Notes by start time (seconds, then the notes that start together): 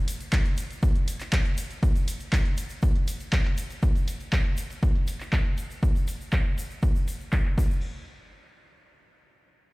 0.08 open hi-hat, shaker
0.20 closed hi-hat, shaker
0.32 kick, clap, closed hi-hat, shaker
0.46 closed hi-hat
0.57 open hi-hat, shaker
0.71 closed hi-hat, shaker
0.83 kick, closed hi-hat, shaker
0.96 closed hi-hat
1.08 open hi-hat, shaker
1.20 clap, closed hi-hat, shaker
1.33 kick, clap, closed hi-hat, shaker
1.45 closed hi-hat
1.57 open hi-hat, shaker
1.70 closed hi-hat, shaker
1.83 kick, closed hi-hat, shaker
1.96 closed hi-hat, shaker
2.08 open hi-hat, shaker
2.20 closed hi-hat, shaker
2.33 kick, clap, closed hi-hat, shaker
2.46 closed hi-hat
2.58 open hi-hat, shaker
2.69 closed hi-hat, shaker
2.82 kick, closed hi-hat, shaker
2.96 closed hi-hat
3.08 open hi-hat, shaker
3.20 closed hi-hat, shaker
3.33 kick, clap, closed hi-hat, shaker
3.45 clap, closed hi-hat
3.58 open hi-hat, shaker
3.70 closed hi-hat, shaker
3.82 kick, closed hi-hat, shaker
3.95 closed hi-hat, shaker
4.08 open hi-hat, shaker
4.20 closed hi-hat, shaker
4.32 kick, clap, closed hi-hat, shaker
4.45 closed hi-hat
4.57 open hi-hat, shaker
4.70 closed hi-hat, shaker
4.83 kick, closed hi-hat, shaker
4.95 closed hi-hat
5.07 open hi-hat, shaker
5.20 clap, closed hi-hat, shaker
5.33 kick, clap, closed hi-hat, shaker
5.45 closed hi-hat
5.58 open hi-hat, shaker
5.70 closed hi-hat, shaker
5.83 kick, closed hi-hat, shaker
5.95 closed hi-hat, shaker
6.08 open hi-hat, shaker
6.21 closed hi-hat, shaker
6.32 kick, clap, closed hi-hat, shaker
6.45 closed hi-hat
6.58 open hi-hat, shaker
6.70 closed hi-hat, shaker
6.83 kick, closed hi-hat, shaker
6.95 closed hi-hat, shaker
7.08 open hi-hat, shaker
7.20 closed hi-hat, shaker
7.32 kick, clap, shaker
7.46 clap, closed hi-hat
7.58 kick, crash, shaker
7.71 shaker